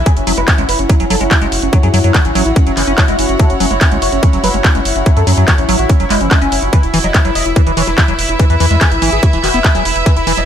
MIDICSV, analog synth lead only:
0, 0, Header, 1, 2, 480
1, 0, Start_track
1, 0, Tempo, 416667
1, 71, Time_signature, 4, 2, 24, 8
1, 12041, End_track
2, 0, Start_track
2, 0, Title_t, "Analog synth lead"
2, 0, Program_c, 0, 81
2, 72, Note_on_c, 0, 68, 100
2, 132, Note_off_c, 0, 68, 0
2, 191, Note_on_c, 0, 61, 67
2, 252, Note_off_c, 0, 61, 0
2, 312, Note_on_c, 0, 61, 65
2, 372, Note_off_c, 0, 61, 0
2, 432, Note_on_c, 0, 71, 96
2, 492, Note_off_c, 0, 71, 0
2, 552, Note_on_c, 0, 61, 65
2, 612, Note_off_c, 0, 61, 0
2, 671, Note_on_c, 0, 61, 66
2, 732, Note_off_c, 0, 61, 0
2, 792, Note_on_c, 0, 71, 97
2, 852, Note_off_c, 0, 71, 0
2, 912, Note_on_c, 0, 61, 63
2, 972, Note_off_c, 0, 61, 0
2, 1032, Note_on_c, 0, 61, 64
2, 1092, Note_off_c, 0, 61, 0
2, 1152, Note_on_c, 0, 61, 66
2, 1212, Note_off_c, 0, 61, 0
2, 1271, Note_on_c, 0, 69, 96
2, 1332, Note_off_c, 0, 69, 0
2, 1391, Note_on_c, 0, 61, 65
2, 1452, Note_off_c, 0, 61, 0
2, 1512, Note_on_c, 0, 61, 65
2, 1572, Note_off_c, 0, 61, 0
2, 1631, Note_on_c, 0, 61, 64
2, 1692, Note_off_c, 0, 61, 0
2, 1871, Note_on_c, 0, 61, 66
2, 1931, Note_off_c, 0, 61, 0
2, 1991, Note_on_c, 0, 61, 65
2, 2052, Note_off_c, 0, 61, 0
2, 2111, Note_on_c, 0, 68, 98
2, 2171, Note_off_c, 0, 68, 0
2, 2231, Note_on_c, 0, 61, 66
2, 2291, Note_off_c, 0, 61, 0
2, 2351, Note_on_c, 0, 61, 65
2, 2411, Note_off_c, 0, 61, 0
2, 2470, Note_on_c, 0, 64, 95
2, 2531, Note_off_c, 0, 64, 0
2, 2590, Note_on_c, 0, 61, 67
2, 2651, Note_off_c, 0, 61, 0
2, 2710, Note_on_c, 0, 61, 69
2, 2771, Note_off_c, 0, 61, 0
2, 2831, Note_on_c, 0, 64, 95
2, 2891, Note_off_c, 0, 64, 0
2, 2951, Note_on_c, 0, 61, 64
2, 3011, Note_off_c, 0, 61, 0
2, 3071, Note_on_c, 0, 61, 68
2, 3132, Note_off_c, 0, 61, 0
2, 3191, Note_on_c, 0, 61, 93
2, 3251, Note_off_c, 0, 61, 0
2, 3311, Note_on_c, 0, 61, 71
2, 3372, Note_off_c, 0, 61, 0
2, 3431, Note_on_c, 0, 61, 65
2, 3492, Note_off_c, 0, 61, 0
2, 3551, Note_on_c, 0, 64, 95
2, 3612, Note_off_c, 0, 64, 0
2, 3671, Note_on_c, 0, 61, 65
2, 3732, Note_off_c, 0, 61, 0
2, 3791, Note_on_c, 0, 61, 66
2, 3852, Note_off_c, 0, 61, 0
2, 3911, Note_on_c, 0, 69, 98
2, 3972, Note_off_c, 0, 69, 0
2, 4031, Note_on_c, 0, 61, 66
2, 4092, Note_off_c, 0, 61, 0
2, 4151, Note_on_c, 0, 61, 65
2, 4212, Note_off_c, 0, 61, 0
2, 4271, Note_on_c, 0, 73, 96
2, 4332, Note_off_c, 0, 73, 0
2, 4391, Note_on_c, 0, 61, 66
2, 4451, Note_off_c, 0, 61, 0
2, 4512, Note_on_c, 0, 61, 67
2, 4572, Note_off_c, 0, 61, 0
2, 4631, Note_on_c, 0, 73, 100
2, 4692, Note_off_c, 0, 73, 0
2, 4751, Note_on_c, 0, 61, 64
2, 4812, Note_off_c, 0, 61, 0
2, 4871, Note_on_c, 0, 61, 65
2, 4932, Note_off_c, 0, 61, 0
2, 4992, Note_on_c, 0, 61, 65
2, 5052, Note_off_c, 0, 61, 0
2, 5112, Note_on_c, 0, 71, 92
2, 5172, Note_off_c, 0, 71, 0
2, 5232, Note_on_c, 0, 61, 68
2, 5292, Note_off_c, 0, 61, 0
2, 5351, Note_on_c, 0, 61, 68
2, 5412, Note_off_c, 0, 61, 0
2, 5471, Note_on_c, 0, 61, 65
2, 5532, Note_off_c, 0, 61, 0
2, 5712, Note_on_c, 0, 61, 66
2, 5772, Note_off_c, 0, 61, 0
2, 5831, Note_on_c, 0, 61, 65
2, 5891, Note_off_c, 0, 61, 0
2, 5951, Note_on_c, 0, 69, 94
2, 6012, Note_off_c, 0, 69, 0
2, 6071, Note_on_c, 0, 61, 64
2, 6132, Note_off_c, 0, 61, 0
2, 6190, Note_on_c, 0, 61, 62
2, 6251, Note_off_c, 0, 61, 0
2, 6311, Note_on_c, 0, 66, 94
2, 6371, Note_off_c, 0, 66, 0
2, 6431, Note_on_c, 0, 61, 64
2, 6492, Note_off_c, 0, 61, 0
2, 6551, Note_on_c, 0, 61, 68
2, 6612, Note_off_c, 0, 61, 0
2, 6670, Note_on_c, 0, 66, 94
2, 6731, Note_off_c, 0, 66, 0
2, 6791, Note_on_c, 0, 61, 67
2, 6852, Note_off_c, 0, 61, 0
2, 6911, Note_on_c, 0, 61, 65
2, 6971, Note_off_c, 0, 61, 0
2, 7031, Note_on_c, 0, 64, 91
2, 7091, Note_off_c, 0, 64, 0
2, 7152, Note_on_c, 0, 61, 67
2, 7212, Note_off_c, 0, 61, 0
2, 7272, Note_on_c, 0, 61, 69
2, 7332, Note_off_c, 0, 61, 0
2, 7391, Note_on_c, 0, 61, 93
2, 7452, Note_off_c, 0, 61, 0
2, 7511, Note_on_c, 0, 61, 66
2, 7572, Note_off_c, 0, 61, 0
2, 7631, Note_on_c, 0, 61, 64
2, 7692, Note_off_c, 0, 61, 0
2, 7751, Note_on_c, 0, 71, 99
2, 7812, Note_off_c, 0, 71, 0
2, 7871, Note_on_c, 0, 64, 65
2, 7932, Note_off_c, 0, 64, 0
2, 7991, Note_on_c, 0, 64, 64
2, 8051, Note_off_c, 0, 64, 0
2, 8111, Note_on_c, 0, 75, 95
2, 8171, Note_off_c, 0, 75, 0
2, 8231, Note_on_c, 0, 64, 66
2, 8292, Note_off_c, 0, 64, 0
2, 8351, Note_on_c, 0, 64, 65
2, 8412, Note_off_c, 0, 64, 0
2, 8471, Note_on_c, 0, 75, 99
2, 8531, Note_off_c, 0, 75, 0
2, 8591, Note_on_c, 0, 64, 65
2, 8652, Note_off_c, 0, 64, 0
2, 8711, Note_on_c, 0, 64, 65
2, 8772, Note_off_c, 0, 64, 0
2, 8831, Note_on_c, 0, 64, 68
2, 8892, Note_off_c, 0, 64, 0
2, 8951, Note_on_c, 0, 73, 96
2, 9012, Note_off_c, 0, 73, 0
2, 9071, Note_on_c, 0, 64, 66
2, 9132, Note_off_c, 0, 64, 0
2, 9191, Note_on_c, 0, 64, 66
2, 9252, Note_off_c, 0, 64, 0
2, 9311, Note_on_c, 0, 64, 64
2, 9371, Note_off_c, 0, 64, 0
2, 9551, Note_on_c, 0, 64, 68
2, 9612, Note_off_c, 0, 64, 0
2, 9671, Note_on_c, 0, 64, 63
2, 9731, Note_off_c, 0, 64, 0
2, 9791, Note_on_c, 0, 71, 99
2, 9851, Note_off_c, 0, 71, 0
2, 9911, Note_on_c, 0, 64, 64
2, 9971, Note_off_c, 0, 64, 0
2, 10031, Note_on_c, 0, 64, 66
2, 10092, Note_off_c, 0, 64, 0
2, 10151, Note_on_c, 0, 68, 93
2, 10211, Note_off_c, 0, 68, 0
2, 10271, Note_on_c, 0, 64, 65
2, 10331, Note_off_c, 0, 64, 0
2, 10391, Note_on_c, 0, 64, 69
2, 10452, Note_off_c, 0, 64, 0
2, 10511, Note_on_c, 0, 68, 99
2, 10571, Note_off_c, 0, 68, 0
2, 10631, Note_on_c, 0, 64, 65
2, 10692, Note_off_c, 0, 64, 0
2, 10751, Note_on_c, 0, 64, 63
2, 10812, Note_off_c, 0, 64, 0
2, 10871, Note_on_c, 0, 66, 95
2, 10932, Note_off_c, 0, 66, 0
2, 10991, Note_on_c, 0, 64, 69
2, 11052, Note_off_c, 0, 64, 0
2, 11111, Note_on_c, 0, 64, 67
2, 11172, Note_off_c, 0, 64, 0
2, 11231, Note_on_c, 0, 68, 98
2, 11292, Note_off_c, 0, 68, 0
2, 11351, Note_on_c, 0, 64, 64
2, 11412, Note_off_c, 0, 64, 0
2, 11471, Note_on_c, 0, 64, 66
2, 11532, Note_off_c, 0, 64, 0
2, 11591, Note_on_c, 0, 71, 99
2, 11652, Note_off_c, 0, 71, 0
2, 11712, Note_on_c, 0, 64, 67
2, 11772, Note_off_c, 0, 64, 0
2, 11831, Note_on_c, 0, 64, 61
2, 11892, Note_off_c, 0, 64, 0
2, 11952, Note_on_c, 0, 75, 95
2, 12012, Note_off_c, 0, 75, 0
2, 12041, End_track
0, 0, End_of_file